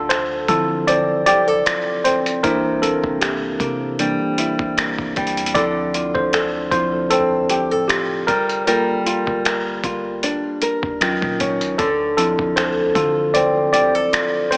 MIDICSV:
0, 0, Header, 1, 5, 480
1, 0, Start_track
1, 0, Key_signature, -1, "minor"
1, 0, Tempo, 779221
1, 1502, Time_signature, 4, 2, 24, 8
1, 8976, End_track
2, 0, Start_track
2, 0, Title_t, "Tine electric piano"
2, 0, Program_c, 0, 4
2, 0, Control_c, 0, 64, 127
2, 0, Note_on_c, 0, 69, 89
2, 57, Note_on_c, 0, 72, 93
2, 67, Note_off_c, 0, 69, 0
2, 283, Note_off_c, 0, 72, 0
2, 299, Note_on_c, 0, 69, 92
2, 301, Note_on_c, 0, 53, 55
2, 306, Note_on_c, 0, 60, 49
2, 309, Note_on_c, 0, 64, 65
2, 524, Note_off_c, 0, 69, 0
2, 539, Note_on_c, 0, 74, 104
2, 628, Note_off_c, 0, 53, 0
2, 631, Note_off_c, 0, 60, 0
2, 633, Note_off_c, 0, 64, 0
2, 770, Note_off_c, 0, 74, 0
2, 778, Note_on_c, 0, 74, 106
2, 1259, Note_on_c, 0, 72, 93
2, 1275, Note_off_c, 0, 74, 0
2, 1498, Note_on_c, 0, 70, 94
2, 1500, Note_on_c, 0, 52, 53
2, 1504, Note_on_c, 0, 58, 49
2, 1507, Note_on_c, 0, 62, 59
2, 1508, Note_off_c, 0, 72, 0
2, 1510, Control_c, 0, 64, 0
2, 1611, Control_c, 0, 64, 127
2, 1724, Note_off_c, 0, 70, 0
2, 1737, Note_on_c, 0, 69, 84
2, 1977, Note_on_c, 0, 67, 69
2, 1987, Note_off_c, 0, 69, 0
2, 2197, Note_off_c, 0, 52, 0
2, 2199, Note_off_c, 0, 58, 0
2, 2200, Note_off_c, 0, 62, 0
2, 2461, Note_on_c, 0, 52, 49
2, 2463, Note_on_c, 0, 58, 47
2, 2466, Note_on_c, 0, 62, 56
2, 2678, Note_off_c, 0, 52, 0
2, 2679, Note_off_c, 0, 58, 0
2, 2680, Note_off_c, 0, 62, 0
2, 3155, Note_off_c, 0, 67, 0
2, 3416, Note_on_c, 0, 74, 101
2, 3418, Note_on_c, 0, 53, 53
2, 3422, Note_on_c, 0, 60, 50
2, 3426, Note_on_c, 0, 64, 59
2, 3431, Control_c, 0, 64, 0
2, 3540, Control_c, 0, 64, 127
2, 3786, Note_on_c, 0, 72, 96
2, 3800, Note_off_c, 0, 74, 0
2, 4115, Note_off_c, 0, 53, 0
2, 4117, Note_off_c, 0, 60, 0
2, 4119, Note_off_c, 0, 64, 0
2, 4129, Note_off_c, 0, 72, 0
2, 4136, Note_on_c, 0, 72, 92
2, 4141, Note_on_c, 0, 53, 49
2, 4143, Note_on_c, 0, 60, 45
2, 4146, Note_on_c, 0, 64, 53
2, 4358, Note_off_c, 0, 53, 0
2, 4359, Note_off_c, 0, 60, 0
2, 4360, Note_off_c, 0, 64, 0
2, 4376, Note_on_c, 0, 69, 92
2, 4387, Note_off_c, 0, 72, 0
2, 4853, Note_on_c, 0, 67, 85
2, 4874, Note_off_c, 0, 69, 0
2, 5095, Note_on_c, 0, 70, 85
2, 5105, Note_off_c, 0, 67, 0
2, 5111, Control_c, 0, 64, 0
2, 5205, Control_c, 0, 64, 127
2, 5343, Note_on_c, 0, 69, 55
2, 5347, Note_on_c, 0, 58, 46
2, 5350, Note_on_c, 0, 65, 59
2, 6758, Note_off_c, 0, 69, 0
2, 6760, Note_off_c, 0, 58, 0
2, 6762, Note_off_c, 0, 65, 0
2, 6781, Note_on_c, 0, 54, 59
2, 6785, Note_on_c, 0, 61, 51
2, 6788, Note_on_c, 0, 65, 62
2, 6791, Control_c, 0, 64, 0
2, 6903, Control_c, 0, 64, 127
2, 6994, Note_off_c, 0, 70, 0
2, 7108, Note_off_c, 0, 54, 0
2, 7110, Note_off_c, 0, 61, 0
2, 7112, Note_off_c, 0, 65, 0
2, 7258, Note_on_c, 0, 69, 82
2, 7271, Control_c, 0, 64, 0
2, 7378, Control_c, 0, 64, 127
2, 7483, Note_off_c, 0, 69, 0
2, 7499, Note_on_c, 0, 69, 79
2, 7500, Note_on_c, 0, 53, 58
2, 7505, Note_on_c, 0, 60, 51
2, 7508, Note_on_c, 0, 64, 59
2, 7738, Note_on_c, 0, 72, 88
2, 7748, Note_off_c, 0, 69, 0
2, 7963, Note_off_c, 0, 72, 0
2, 7978, Note_on_c, 0, 69, 79
2, 8197, Note_off_c, 0, 53, 0
2, 8199, Note_off_c, 0, 60, 0
2, 8201, Note_off_c, 0, 64, 0
2, 8216, Note_on_c, 0, 74, 94
2, 8227, Note_off_c, 0, 69, 0
2, 8449, Note_off_c, 0, 74, 0
2, 8456, Note_on_c, 0, 74, 95
2, 8915, Note_off_c, 0, 74, 0
2, 8936, Note_on_c, 0, 72, 95
2, 8976, Note_off_c, 0, 72, 0
2, 8976, End_track
3, 0, Start_track
3, 0, Title_t, "Nylon-string guitar"
3, 0, Program_c, 1, 24
3, 0, Note_on_c, 1, 50, 82
3, 0, Note_on_c, 1, 65, 59
3, 63, Note_on_c, 1, 69, 64
3, 294, Note_off_c, 1, 65, 0
3, 301, Note_on_c, 1, 65, 59
3, 541, Note_on_c, 1, 60, 71
3, 779, Note_off_c, 1, 69, 0
3, 782, Note_on_c, 1, 67, 63
3, 909, Note_off_c, 1, 67, 0
3, 909, Note_on_c, 1, 69, 56
3, 1013, Note_off_c, 1, 65, 0
3, 1020, Note_on_c, 1, 65, 61
3, 1258, Note_off_c, 1, 60, 0
3, 1261, Note_on_c, 1, 60, 60
3, 1498, Note_off_c, 1, 50, 0
3, 1501, Note_off_c, 1, 65, 0
3, 1501, Note_on_c, 1, 48, 76
3, 1504, Note_on_c, 1, 64, 70
3, 1553, Note_off_c, 1, 69, 0
3, 1738, Note_off_c, 1, 60, 0
3, 1741, Note_on_c, 1, 58, 59
3, 1974, Note_off_c, 1, 64, 0
3, 1981, Note_on_c, 1, 64, 68
3, 2213, Note_off_c, 1, 58, 0
3, 2221, Note_on_c, 1, 58, 56
3, 2460, Note_on_c, 1, 55, 68
3, 2694, Note_off_c, 1, 64, 0
3, 2701, Note_on_c, 1, 64, 63
3, 2933, Note_off_c, 1, 58, 0
3, 2940, Note_on_c, 1, 58, 60
3, 3172, Note_off_c, 1, 55, 0
3, 3179, Note_on_c, 1, 55, 58
3, 3417, Note_off_c, 1, 48, 0
3, 3420, Note_on_c, 1, 50, 79
3, 3423, Note_on_c, 1, 69, 64
3, 3473, Note_off_c, 1, 55, 0
3, 3473, Note_off_c, 1, 58, 0
3, 3474, Note_off_c, 1, 64, 0
3, 3660, Note_on_c, 1, 65, 57
3, 3893, Note_off_c, 1, 69, 0
3, 3900, Note_on_c, 1, 69, 65
3, 4139, Note_off_c, 1, 65, 0
3, 4141, Note_on_c, 1, 65, 55
3, 4381, Note_on_c, 1, 60, 67
3, 4617, Note_off_c, 1, 69, 0
3, 4620, Note_on_c, 1, 67, 63
3, 4751, Note_off_c, 1, 67, 0
3, 4751, Note_on_c, 1, 69, 56
3, 4858, Note_off_c, 1, 65, 0
3, 4860, Note_on_c, 1, 65, 61
3, 5101, Note_on_c, 1, 55, 72
3, 5154, Note_off_c, 1, 60, 0
3, 5154, Note_off_c, 1, 69, 0
3, 5334, Note_off_c, 1, 55, 0
3, 5342, Note_on_c, 1, 55, 81
3, 5345, Note_on_c, 1, 70, 69
3, 5360, Note_off_c, 1, 65, 0
3, 5576, Note_off_c, 1, 50, 0
3, 5583, Note_on_c, 1, 65, 57
3, 5821, Note_off_c, 1, 70, 0
3, 5824, Note_on_c, 1, 70, 62
3, 6056, Note_off_c, 1, 65, 0
3, 6064, Note_on_c, 1, 65, 56
3, 6304, Note_on_c, 1, 62, 70
3, 6536, Note_off_c, 1, 70, 0
3, 6544, Note_on_c, 1, 70, 61
3, 6785, Note_on_c, 1, 51, 82
3, 6834, Note_off_c, 1, 55, 0
3, 6835, Note_off_c, 1, 62, 0
3, 6835, Note_off_c, 1, 65, 0
3, 6835, Note_off_c, 1, 70, 0
3, 7023, Note_on_c, 1, 61, 59
3, 7259, Note_off_c, 1, 51, 0
3, 7262, Note_on_c, 1, 50, 80
3, 7265, Note_on_c, 1, 69, 70
3, 7315, Note_off_c, 1, 61, 0
3, 7502, Note_on_c, 1, 65, 59
3, 7734, Note_off_c, 1, 69, 0
3, 7741, Note_on_c, 1, 69, 65
3, 7974, Note_off_c, 1, 65, 0
3, 7982, Note_on_c, 1, 65, 60
3, 8223, Note_on_c, 1, 60, 72
3, 8460, Note_off_c, 1, 69, 0
3, 8462, Note_on_c, 1, 67, 64
3, 8592, Note_off_c, 1, 67, 0
3, 8592, Note_on_c, 1, 69, 56
3, 8694, Note_off_c, 1, 65, 0
3, 8702, Note_on_c, 1, 65, 62
3, 8938, Note_off_c, 1, 60, 0
3, 8941, Note_on_c, 1, 60, 59
3, 8976, Note_off_c, 1, 50, 0
3, 8976, Note_off_c, 1, 60, 0
3, 8976, Note_off_c, 1, 65, 0
3, 8976, Note_off_c, 1, 69, 0
3, 8976, End_track
4, 0, Start_track
4, 0, Title_t, "808-style bass"
4, 0, Program_c, 2, 38
4, 0, Note_on_c, 2, 38, 92
4, 288, Note_off_c, 2, 38, 0
4, 300, Note_on_c, 2, 50, 98
4, 784, Note_on_c, 2, 36, 98
4, 793, Note_off_c, 2, 50, 0
4, 1011, Note_off_c, 2, 36, 0
4, 1502, Note_on_c, 2, 36, 109
4, 1857, Note_off_c, 2, 36, 0
4, 1871, Note_on_c, 2, 36, 89
4, 2208, Note_off_c, 2, 36, 0
4, 2217, Note_on_c, 2, 48, 100
4, 2575, Note_off_c, 2, 48, 0
4, 2829, Note_on_c, 2, 36, 91
4, 3061, Note_off_c, 2, 36, 0
4, 3071, Note_on_c, 2, 36, 101
4, 3310, Note_on_c, 2, 40, 89
4, 3320, Note_off_c, 2, 36, 0
4, 3416, Note_off_c, 2, 40, 0
4, 3420, Note_on_c, 2, 38, 103
4, 3776, Note_off_c, 2, 38, 0
4, 3790, Note_on_c, 2, 38, 94
4, 4127, Note_off_c, 2, 38, 0
4, 4136, Note_on_c, 2, 38, 106
4, 4753, Note_on_c, 2, 45, 91
4, 4762, Note_off_c, 2, 38, 0
4, 5085, Note_off_c, 2, 45, 0
4, 5103, Note_on_c, 2, 29, 98
4, 5688, Note_off_c, 2, 29, 0
4, 5712, Note_on_c, 2, 31, 95
4, 6048, Note_off_c, 2, 31, 0
4, 6060, Note_on_c, 2, 31, 99
4, 6416, Note_off_c, 2, 31, 0
4, 6672, Note_on_c, 2, 39, 97
4, 6902, Note_off_c, 2, 39, 0
4, 6914, Note_on_c, 2, 46, 103
4, 7154, Note_on_c, 2, 37, 90
4, 7164, Note_off_c, 2, 46, 0
4, 7258, Note_off_c, 2, 37, 0
4, 7264, Note_on_c, 2, 38, 103
4, 7618, Note_off_c, 2, 38, 0
4, 7632, Note_on_c, 2, 38, 96
4, 7969, Note_off_c, 2, 38, 0
4, 7980, Note_on_c, 2, 50, 103
4, 8464, Note_on_c, 2, 36, 100
4, 8473, Note_off_c, 2, 50, 0
4, 8691, Note_off_c, 2, 36, 0
4, 8976, End_track
5, 0, Start_track
5, 0, Title_t, "Drums"
5, 62, Note_on_c, 9, 42, 61
5, 69, Note_on_c, 9, 26, 102
5, 124, Note_off_c, 9, 42, 0
5, 130, Note_off_c, 9, 26, 0
5, 298, Note_on_c, 9, 36, 88
5, 301, Note_on_c, 9, 42, 59
5, 360, Note_off_c, 9, 36, 0
5, 362, Note_off_c, 9, 42, 0
5, 541, Note_on_c, 9, 42, 63
5, 603, Note_off_c, 9, 42, 0
5, 779, Note_on_c, 9, 42, 72
5, 840, Note_off_c, 9, 42, 0
5, 1024, Note_on_c, 9, 42, 61
5, 1030, Note_on_c, 9, 26, 115
5, 1086, Note_off_c, 9, 42, 0
5, 1091, Note_off_c, 9, 26, 0
5, 1263, Note_on_c, 9, 42, 61
5, 1324, Note_off_c, 9, 42, 0
5, 1394, Note_on_c, 9, 42, 42
5, 1455, Note_off_c, 9, 42, 0
5, 1502, Note_on_c, 9, 36, 105
5, 1502, Note_on_c, 9, 42, 64
5, 1563, Note_off_c, 9, 42, 0
5, 1564, Note_off_c, 9, 36, 0
5, 1743, Note_on_c, 9, 42, 61
5, 1805, Note_off_c, 9, 42, 0
5, 1870, Note_on_c, 9, 36, 77
5, 1932, Note_off_c, 9, 36, 0
5, 1980, Note_on_c, 9, 42, 63
5, 1986, Note_on_c, 9, 26, 102
5, 2042, Note_off_c, 9, 42, 0
5, 2048, Note_off_c, 9, 26, 0
5, 2217, Note_on_c, 9, 36, 84
5, 2220, Note_on_c, 9, 42, 58
5, 2278, Note_off_c, 9, 36, 0
5, 2281, Note_off_c, 9, 42, 0
5, 2459, Note_on_c, 9, 42, 61
5, 2520, Note_off_c, 9, 42, 0
5, 2698, Note_on_c, 9, 42, 65
5, 2760, Note_off_c, 9, 42, 0
5, 2829, Note_on_c, 9, 36, 95
5, 2890, Note_off_c, 9, 36, 0
5, 2943, Note_on_c, 9, 42, 62
5, 2948, Note_on_c, 9, 26, 109
5, 3004, Note_off_c, 9, 42, 0
5, 3010, Note_off_c, 9, 26, 0
5, 3071, Note_on_c, 9, 36, 84
5, 3132, Note_off_c, 9, 36, 0
5, 3180, Note_on_c, 9, 42, 39
5, 3185, Note_on_c, 9, 36, 90
5, 3242, Note_off_c, 9, 42, 0
5, 3245, Note_on_c, 9, 42, 48
5, 3247, Note_off_c, 9, 36, 0
5, 3307, Note_off_c, 9, 42, 0
5, 3310, Note_on_c, 9, 42, 59
5, 3365, Note_off_c, 9, 42, 0
5, 3365, Note_on_c, 9, 42, 69
5, 3420, Note_off_c, 9, 42, 0
5, 3420, Note_on_c, 9, 36, 106
5, 3420, Note_on_c, 9, 42, 68
5, 3481, Note_off_c, 9, 42, 0
5, 3482, Note_off_c, 9, 36, 0
5, 3661, Note_on_c, 9, 42, 60
5, 3723, Note_off_c, 9, 42, 0
5, 3789, Note_on_c, 9, 36, 73
5, 3851, Note_off_c, 9, 36, 0
5, 3899, Note_on_c, 9, 42, 62
5, 3906, Note_on_c, 9, 26, 97
5, 3961, Note_off_c, 9, 42, 0
5, 3967, Note_off_c, 9, 26, 0
5, 4136, Note_on_c, 9, 36, 87
5, 4138, Note_on_c, 9, 42, 58
5, 4198, Note_off_c, 9, 36, 0
5, 4200, Note_off_c, 9, 42, 0
5, 4377, Note_on_c, 9, 42, 67
5, 4439, Note_off_c, 9, 42, 0
5, 4617, Note_on_c, 9, 42, 70
5, 4678, Note_off_c, 9, 42, 0
5, 4863, Note_on_c, 9, 42, 62
5, 4868, Note_on_c, 9, 26, 106
5, 4925, Note_off_c, 9, 42, 0
5, 4930, Note_off_c, 9, 26, 0
5, 5102, Note_on_c, 9, 36, 97
5, 5102, Note_on_c, 9, 42, 62
5, 5164, Note_off_c, 9, 36, 0
5, 5164, Note_off_c, 9, 42, 0
5, 5232, Note_on_c, 9, 42, 40
5, 5294, Note_off_c, 9, 42, 0
5, 5343, Note_on_c, 9, 42, 66
5, 5405, Note_off_c, 9, 42, 0
5, 5584, Note_on_c, 9, 42, 60
5, 5646, Note_off_c, 9, 42, 0
5, 5712, Note_on_c, 9, 36, 79
5, 5773, Note_off_c, 9, 36, 0
5, 5823, Note_on_c, 9, 42, 59
5, 5829, Note_on_c, 9, 26, 102
5, 5885, Note_off_c, 9, 42, 0
5, 5891, Note_off_c, 9, 26, 0
5, 6059, Note_on_c, 9, 36, 85
5, 6062, Note_on_c, 9, 42, 57
5, 6121, Note_off_c, 9, 36, 0
5, 6123, Note_off_c, 9, 42, 0
5, 6302, Note_on_c, 9, 42, 66
5, 6363, Note_off_c, 9, 42, 0
5, 6539, Note_on_c, 9, 42, 69
5, 6601, Note_off_c, 9, 42, 0
5, 6671, Note_on_c, 9, 36, 90
5, 6732, Note_off_c, 9, 36, 0
5, 6783, Note_on_c, 9, 42, 66
5, 6788, Note_on_c, 9, 26, 109
5, 6844, Note_off_c, 9, 42, 0
5, 6850, Note_off_c, 9, 26, 0
5, 6914, Note_on_c, 9, 36, 89
5, 6975, Note_off_c, 9, 36, 0
5, 7023, Note_on_c, 9, 42, 66
5, 7028, Note_on_c, 9, 36, 91
5, 7084, Note_off_c, 9, 42, 0
5, 7090, Note_off_c, 9, 36, 0
5, 7152, Note_on_c, 9, 42, 40
5, 7214, Note_off_c, 9, 42, 0
5, 7262, Note_on_c, 9, 42, 64
5, 7263, Note_on_c, 9, 36, 102
5, 7323, Note_off_c, 9, 42, 0
5, 7324, Note_off_c, 9, 36, 0
5, 7502, Note_on_c, 9, 42, 63
5, 7564, Note_off_c, 9, 42, 0
5, 7632, Note_on_c, 9, 36, 80
5, 7693, Note_off_c, 9, 36, 0
5, 7742, Note_on_c, 9, 42, 65
5, 7749, Note_on_c, 9, 26, 103
5, 7804, Note_off_c, 9, 42, 0
5, 7810, Note_off_c, 9, 26, 0
5, 7979, Note_on_c, 9, 36, 89
5, 7983, Note_on_c, 9, 42, 55
5, 8041, Note_off_c, 9, 36, 0
5, 8045, Note_off_c, 9, 42, 0
5, 8221, Note_on_c, 9, 42, 66
5, 8283, Note_off_c, 9, 42, 0
5, 8462, Note_on_c, 9, 42, 65
5, 8523, Note_off_c, 9, 42, 0
5, 8705, Note_on_c, 9, 42, 66
5, 8711, Note_on_c, 9, 26, 105
5, 8767, Note_off_c, 9, 42, 0
5, 8772, Note_off_c, 9, 26, 0
5, 8945, Note_on_c, 9, 42, 64
5, 8976, Note_off_c, 9, 42, 0
5, 8976, End_track
0, 0, End_of_file